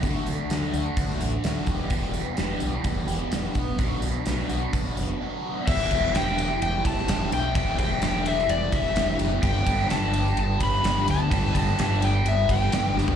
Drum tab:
CC |----------------|----------------|----------------|x---------------|
RD |----------------|----------------|----------------|--x-x-x-x-x-x-x-|
HH |x-x-x-x-x-x-x-x-|x-x-x-x-x-x-x-x-|x-x-x-x-x-x-----|----------------|
SD |----o----o--o---|----o-------o---|----o-----------|----o-------o---|
FT |----------------|----------------|----------------|----------------|
BD |o-------o-----o-|o-------o-----o-|o-------o-------|o-o-------o-----|

CC |----------------|----------------|----------------|
RD |x-x-x-x-x-x-x-x-|x-x-x-x-x-x-x-x-|x-x-x-x-x-x-x---|
HH |----------------|----------------|----------------|
SD |----o--o----o---|----o--o----o---|----o-------o-o-|
FT |----------------|----------------|---------------o|
BD |o-o-------o-----|o-o-------o-----|o-o-------o-----|